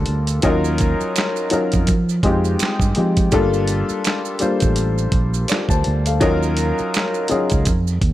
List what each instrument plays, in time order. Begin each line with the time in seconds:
Already playing: upright piano G3 A#3 D4 F4 A4
0.06 fingered electric bass D2, closed hi-hat
0.27 closed hi-hat, maracas
0.42 fingered electric bass D#2, upright piano F#3 C#4 D#4 F4 A#4, kick, closed hi-hat, maracas
0.65 maracas
0.78 kick, closed hi-hat, maracas
1.01 muted fingered electric bass stroke, maracas
1.16 finger snap, snare, clap, closed hi-hat, maracas
1.36 maracas
1.50 upright piano F#3 C#4 D#4 F4 A#4, muted fingered electric bass stroke, closed hi-hat, maracas
1.72 fingered electric bass F2, kick, closed hi-hat, maracas
1.87 fingered electric bass F3, kick, closed hi-hat, maracas
2.09 maracas
2.23 fingered electric bass F2, upright piano G#3 C4 D#4 F4 G4, kick, closed hi-hat
2.45 maracas
2.59 finger snap, muted fingered electric bass stroke, snare, closed hi-hat, maracas
2.64 clap
2.80 fingered electric bass G2, kick, maracas
2.95 fingered electric bass F3, upright piano G#3 C4 D#4 F4 G4, closed hi-hat
3.17 kick, closed hi-hat, maracas
3.32 fingered electric bass G1, upright piano G3 A#3 D4 F4 A4, kick, closed hi-hat, maracas
3.54 maracas
3.68 closed hi-hat, maracas
3.89 muted fingered electric bass stroke, maracas
4.05 finger snap, snare, clap, closed hi-hat, maracas
4.25 maracas
4.39 upright piano G3 A#3 D4 F4 C5, muted fingered electric bass stroke, closed hi-hat, maracas
4.60 fingered electric bass A1, kick, closed hi-hat, maracas
4.76 closed hi-hat, maracas
4.98 maracas
5.12 fingered electric bass A#1, kick, closed hi-hat
5.34 maracas
5.48 upright piano F4 D5, finger snap, snare, closed hi-hat, maracas
5.53 clap
5.69 fingered electric bass D2, upright piano C5 A5, kick, maracas
5.84 fingered electric bass D2, closed hi-hat
6.06 upright piano A4 F5, closed hi-hat, maracas
6.21 fingered electric bass D#2, upright piano F#3 C#4 D#4 F4 A#4, kick, closed hi-hat, maracas
6.43 maracas
6.57 closed hi-hat, maracas
6.78 muted fingered electric bass stroke, maracas
6.94 finger snap, snare, clap, closed hi-hat, maracas
7.14 maracas
7.28 upright piano F#3 C#4 D#4 F4 G#4, muted fingered electric bass stroke, closed hi-hat, maracas
7.50 fingered electric bass C#2, kick, closed hi-hat, maracas
7.65 fingered electric bass F2, kick, closed hi-hat, maracas
7.87 maracas
8.02 fingered electric bass D#2, kick, closed hi-hat